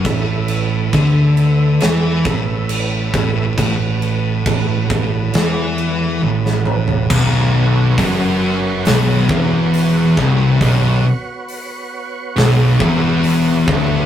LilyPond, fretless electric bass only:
\new Staff \with { instrumentName = "Fretless electric bass" } { \clef bass \time 4/4 \key b \minor \tempo 4 = 68 a,,4 d,4 e,8 a,,4 a,,8 | a,,4 a,,8 a,,8 e,4 a,,4 | b,,,4 fis,,4 b,,,8 e,,4 c,,8 | b,,,8 r4. b,,,8 e,,4 d,,8 | }